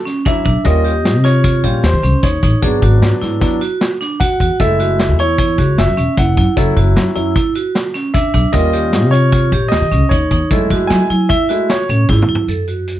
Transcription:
0.05 C#4, snare, closed hi-hat, shaker
0.25 F#3 C#4 D4 E4 E5, kick, snare, closed hi-hat
0.45 B1 D4, kick, closed hi-hat
0.64 D#2 G3 C#4 F4 A#4 D#5, kick, closed hi-hat, shaker
0.85 G4, closed hi-hat
1.05 snare, closed hi-hat
1.14 C3
1.24 F4 C#5, snare, closed hi-hat
1.44 F4, kick, closed hi-hat, shaker
1.63 A#1 G3 C#4 F4 G4, kick, closed hi-hat
1.83 D#2 C5, snare, closed hi-hat, shaker
1.93 D#3
2.03 C#2 C#4, closed hi-hat, shaker
2.23 D#2 D#4 C#5, kick, closed hi-hat
2.43 A1 D#4, kick, closed hi-hat
2.62 G#1 F#3 B3 D4 G#4, kick, closed hi-hat, shaker
2.82 G#1 F#4, kick, closed hi-hat
3.02 G#2, snare, closed hi-hat
3.21 G#2 E4, snare, closed hi-hat
3.41 F#3 B3 D4 E4, kick, snare, closed hi-hat, shaker
3.61 F#4, closed hi-hat
3.81 snare, closed hi-hat
4.01 D4, snare, closed hi-hat, shaker
4.20 F#4 F#5, kick, closed hi-hat, shaker
4.40 E2 F#4, kick, closed hi-hat
4.59 F#1 G#3 A3 E4 A4 E5, kick, closed hi-hat, shaker
4.80 F#4, closed hi-hat
4.99 snare, closed hi-hat
5.09 E2
5.19 E4 C#5, closed hi-hat
5.38 E4, kick, closed hi-hat, shaker
5.58 C#2 F#4, kick, closed hi-hat
5.78 F#1 E5, snare, closed hi-hat, shaker
5.87 F#2
5.97 E1 C#4, closed hi-hat, shaker
6.17 F#1 E4 F#5, kick, closed hi-hat
6.37 F#2 E4, kick, closed hi-hat
6.57 F#1 F#3 C#4 E4 A4, kick, closed hi-hat, shaker
6.77 F#1 F#4, kick, closed hi-hat
6.96 F#2, snare, closed hi-hat
7.15 F#2 F#3 C#4 E4, closed hi-hat
7.36 E4, kick, closed hi-hat, shaker
7.55 F#4, closed hi-hat
7.75 snare, closed hi-hat, shaker
7.94 C#4, snare, closed hi-hat, shaker
8.14 D4 E5, kick, closed hi-hat
8.34 B1 D4, kick, closed hi-hat
8.53 D#2 G3 C#4 F4 A#4 D#5, kick, closed hi-hat, shaker
8.73 G4, closed hi-hat
8.93 snare, closed hi-hat
9.02 C3
9.11 F4 C#5, closed hi-hat
9.32 F4, kick, closed hi-hat, shaker
9.52 A#1 G4, kick, closed hi-hat
9.68 D#2 D#5, snare, closed hi-hat, shaker
9.82 D#3
9.91 C#2 C#4, closed hi-hat, shaker
10.09 D#2 D#4 C#5, kick, closed hi-hat
10.31 D#2 D#4, kick, closed hi-hat
10.50 F#2 G#3 A3 E4 A4, kick, closed hi-hat, shaker
10.70 F#2 F#4, kick, snare, closed hi-hat
10.87 F#3 G#5, snare, closed hi-hat, shaker
11.10 F#3 E4, closed hi-hat, shaker
11.29 E4 E5, kick, closed hi-hat, shaker
11.49 G#3 A3 E4 F#4, closed hi-hat, shaker
11.69 C#5, snare, closed hi-hat, shaker
11.89 A2 C#4, closed hi-hat, shaker
12.09 G#2 E4, kick, snare, shaker
12.22 mid tom
12.29 F#2 E4
12.35 floor tom
12.48 F#2 A4, closed hi-hat
12.68 F#4, closed hi-hat
12.88 closed hi-hat

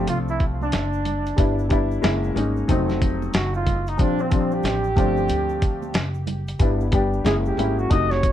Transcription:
Already playing: F3 A3 C4 D4
0.07 C2 F4, closed hi-hat, high conga, shaker
0.28 E4, shaker
0.40 kick, closed hi-hat, shaker
0.62 D4, high conga, shaker
0.72 F#1, snare, closed hi-hat, shaker
0.93 shaker
1.06 closed hi-hat, low conga, shaker
1.26 closed hi-hat, shaker
1.37 G1 G3 B3 D4 E4, kick, closed hi-hat, shaker
1.59 shaker
1.69 G3 B3 D4 E4, kick, closed hi-hat, shaker
1.91 shaker
2.02 F#1 G#3 A#3 C#4 E4, snare, closed hi-hat, shaker
2.24 shaker
2.35 G#1 G#3 A#3 C#4 D#4, closed hi-hat, low conga, shaker
2.57 shaker
2.68 F1 F#3 A3 C4 D#4, kick, closed hi-hat, high conga, shaker
2.89 snare, shaker
3.01 kick, closed hi-hat, shaker
3.22 high conga, shaker
3.33 F#1 F#4, snare, closed hi-hat, shaker
3.54 F4, shaker
3.66 kick, closed hi-hat, low conga, shaker
3.86 D#4, closed hi-hat, shaker
3.98 A#1 F3 G3 C4 D4, kick, closed hi-hat, shaker
4.19 C4, shaker
4.30 F3 G3 C4 D4, kick, closed hi-hat, shaker
4.51 G4, shaker
4.63 A1, snare, closed hi-hat, shaker
4.84 shaker
4.96 G1 F3 A3 C4 D4, kick, closed hi-hat, low conga, shaker
5.17 shaker
5.28 D2, closed hi-hat, high conga, shaker
5.49 shaker
5.62 kick, closed hi-hat, shaker
5.82 high conga, shaker
5.94 F#1, snare, closed hi-hat, shaker
6.14 shaker
6.27 closed hi-hat, low conga, shaker
6.48 closed hi-hat, shaker
6.59 G1 G3 B3 D4 E4, kick, closed hi-hat, shaker
6.81 shaker
6.92 G3 B3 D4 G4, kick, closed hi-hat, low conga, shaker
7.13 shaker
7.24 F#1 G#3 A#3 C#4 E4 G#4, snare, closed hi-hat, shaker
7.46 G4, shaker
7.57 G#1 G#3 A#3 C#4 E4, closed hi-hat, low conga, shaker
7.79 F#4, shaker
7.90 F1 C3 A3 D#4 F#4 D#5, kick, closed hi-hat, high conga, shaker
8.11 C#5, snare, shaker
8.23 kick, closed hi-hat, shaker

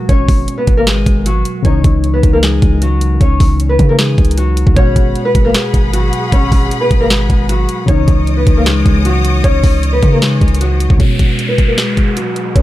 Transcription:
Already playing: B2 G#3 F#4
0.09 G#1 C#4 C#5, kick, closed hi-hat
0.28 G#1, kick, open hi-hat
0.48 closed hi-hat
0.58 B3 B4
0.67 G#1, kick, closed hi-hat
0.77 A#3 A#4
0.87 G#3 G#4, snare, closed hi-hat
1.06 G#1, kick, closed hi-hat
1.26 F#3 F#4, closed hi-hat
1.45 closed hi-hat
1.62 C#2 C#3 E3 C#4 C#5, kick, closed hi-hat
1.67 D#4
1.84 C#2, kick, closed hi-hat
2.04 closed hi-hat
2.14 B3 B4
2.23 C#2, kick, closed hi-hat
2.33 A#3 A#4
2.43 G#3 G#4, snare, closed hi-hat
2.62 C#2, kick, closed hi-hat
2.82 F#3 F#4, closed hi-hat
3.01 closed hi-hat
3.21 C#2 C#4 C#5, kick, closed hi-hat
3.40 C#2, kick, open hi-hat
3.60 closed hi-hat
3.69 B3 B4
3.79 C#3, kick, closed hi-hat
3.89 A#3 A#4
3.99 G#3 G#4, snare, closed hi-hat
4.18 C#2, kick, closed hi-hat
4.25 closed hi-hat
4.31 closed hi-hat
4.38 F#3 F#4, closed hi-hat
4.57 closed hi-hat
4.67 C#2, kick
4.74 G#1 B2 G#3 C#4 G#4 C#5 F#5 B5, kick, closed hi-hat
4.79 F#4
4.96 G#1, kick, closed hi-hat
5.15 closed hi-hat
5.25 B3 B4
5.35 G#1, kick, closed hi-hat
5.45 A#3 A#4
5.54 G#3 G#4, snare, closed hi-hat
5.74 G#1, kick, closed hi-hat
5.93 F#3 F#4, closed hi-hat
6.13 closed hi-hat
6.32 G#1 C#4 C#5, kick, closed hi-hat
6.52 G#1, kick, open hi-hat
6.71 closed hi-hat
6.81 B3 B4
6.91 G#1, kick, closed hi-hat
7.01 A#3 A#4
7.10 G#3 G#4, snare, closed hi-hat
7.30 G#1, kick, closed hi-hat
7.49 F#3 F#4, closed hi-hat
7.69 closed hi-hat
7.86 C#2 C#3 E3 C#4 C#5 D#5 D#6, kick, closed hi-hat
7.90 D#4
8.08 C#2, kick, closed hi-hat
8.27 closed hi-hat
8.37 B3 B4
8.47 C#2, kick, closed hi-hat
8.57 A#3 A#4
8.66 G#3 G#4, snare, closed hi-hat
8.86 C#2, kick, closed hi-hat
9.05 F#3 F#4, closed hi-hat
9.25 closed hi-hat
9.44 C#2 C#4 C#5, kick, closed hi-hat
9.64 C#2, kick, open hi-hat
9.83 closed hi-hat
9.93 B3 B4
10.03 C#3, kick, closed hi-hat
10.12 A#3 A#4
10.22 G#3 G#4, snare, closed hi-hat
10.41 C#2, kick, closed hi-hat
10.48 closed hi-hat
10.54 closed hi-hat
10.61 F#3 F#4, closed hi-hat
10.80 closed hi-hat
10.90 C#2, kick
10.97 B2 G#3 C#4 F#4 B4 C#5, kick, closed hi-hat, downlifter
11.02 F#4
11.19 kick, closed hi-hat
11.39 closed hi-hat
11.49 B3 B4
11.58 kick, closed hi-hat
11.68 A#3 A#4
11.78 G#3 G#4, snare, closed hi-hat
11.97 kick, closed hi-hat
12.17 F#3 F#4, closed hi-hat
12.36 closed hi-hat
12.56 C#4 C#5, kick, closed hi-hat

